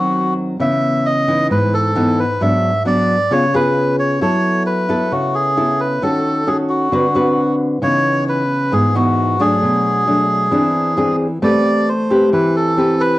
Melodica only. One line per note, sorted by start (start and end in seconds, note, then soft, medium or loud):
0.00 0.34 F#4 medium
0.61 1.07 E5 medium
1.06 1.47 D#5 medium
1.51 1.74 B4 medium
1.74 2.20 A4 medium
2.20 2.42 B4 medium
2.42 2.83 E5 medium
2.87 3.33 D5 medium
3.32 3.54 C#5 medium
3.55 3.96 B4 medium
3.99 4.20 C#5 medium
4.21 4.63 C#5 medium
4.66 5.13 B4 medium
5.12 5.35 F#4 medium
5.35 5.81 G#4 medium
5.80 6.03 B4 medium
6.03 6.48 A4 medium
6.47 6.57 G#4 medium
6.69 7.55 F#4 medium
7.83 8.24 C#5 loud
8.29 8.74 B4 medium
8.73 8.96 G#4 medium
8.96 9.42 F#4 medium
9.41 11.16 G#4 medium
11.43 11.89 D5 medium
11.89 12.30 C5 medium
12.33 12.56 B4 medium
12.56 13.02 A4 medium
13.00 13.19 B4 medium